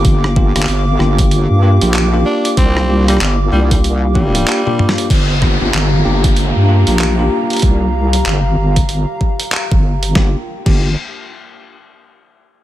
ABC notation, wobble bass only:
X:1
M:4/4
L:1/16
Q:"Swing 16ths" 1/4=95
K:Gm
V:1 name="Wobble bass" clef=bass
G,,,3 G,,, G,,,2 G,,,3 G,,2 B,,,3 z2 | C,,4 G,,,2 C,,6 z4 | G,,,3 G,,, G,,,2 G,,,3 G,,2 B,,,3 z2 | C,,4 G,,,2 G,,,3 z4 G,,,3 |
G,,, z2 G,,,2 z8 z3 |]